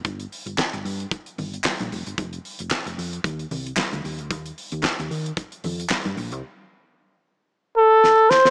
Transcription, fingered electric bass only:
X:1
M:4/4
L:1/16
Q:"Swing 16ths" 1/4=113
K:Fmix
V:1 name="Fingered electric bass" clef=bass
G,,,2 z G,,, z G,,, G,,2 z2 G,,,2 z B,,, F,,, G,,, | F,,,2 z F,,, z F,,, F,,2 E,,2 C,,2 z D,, E,, D,, | E,,2 z E,, z E,, E,2 z2 F,,2 z G,, B,,, C,, | z16 |]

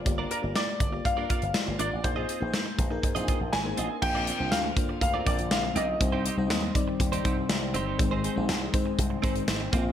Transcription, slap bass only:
X:1
M:4/4
L:1/16
Q:1/4=121
K:Bbmix
V:1 name="Slap bass" clef=bass
G,,,2 z G,,, z2 G,,,2 G,,2 z G,,, z G,,, A,,, =A,,, | B,,,2 z B,,, z2 B,,,2 A,, B,,, z B,,, A,,,2 =A,,, z | B,,,3 C,, D,,2 z2 D,,2 B,,,2 B,,,2 =B,,,2 | C,,3 C,, E,,2 z2 E,,2 C,,2 C,,2 G,,,2 |
A,,,3 B,,, C,,2 z2 C,,2 A,,,2 A,,,2 B,,,2 |]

